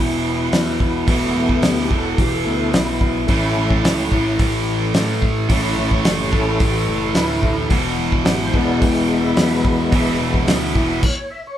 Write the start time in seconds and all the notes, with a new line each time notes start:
Already playing: E1 E2 B2 E3 E4
0.52 E2, snare, open hi-hat
0.80 kick
1.05 E1 E2 B2 A3 B3 E4, kick, open hi-hat
1.10 E3
1.36 E1 E4
1.49 kick
1.63 D2 G4, snare, open hi-hat
1.89 E1 E2 B2 E3, kick
1.94 A4
2.18 E1 G4, kick, open hi-hat
2.35 A4
2.44 D2 A3 B3 E4
2.74 B1 E4, snare, open hi-hat
3.01 kick
3.27 A1 A2 E3 A3 C#4 E4, kick, open hi-hat
3.31 A3
3.56 A1
3.71 kick
3.84 C#2, snare, open hi-hat
4.10 A1 A2 E3 A3 C#4 E4, kick
4.39 A1, kick, open hi-hat
4.94 A2 E3 A3, snare, open hi-hat
5.22 kick
5.48 A1 A2 E3 A3 C#4 E4, kick, open hi-hat
5.53 A3
5.77 A1 E4
5.91 kick
6.05 F#1, snare, open hi-hat
6.10 G4
6.32 A1 A2 E3 A3 C#4 E4, kick
6.37 A4
6.60 A1, kick, open hi-hat
6.64 G4
6.77 A4
6.87 F#1
7.15 D2 A2 E3 A3 E4, snare, open hi-hat
7.43 kick
7.69 E1 E2 B2 E3, kick, open hi-hat
7.97 E1
8.12 kick
8.24 G#1 F#4, snare, open hi-hat
8.28 G4
8.45 C5
8.52 E1 E2 B2 E3 G#3 B3 E4, kick
8.58 D5
8.82 E1, kick, open hi-hat
8.87 G5
9.13 E5
9.37 E2 B2 E3, snare, open hi-hat
9.65 kick
9.91 E1 E2 B2 E3 D#5, kick, open hi-hat
9.96 E5
10.19 E1 G#3 B3 E4
10.34 kick
10.48 D2, snare, open hi-hat
10.74 E1 E2 B2 E3, kick
11.03 C#5, kick, crash
11.30 E5
11.47 C#5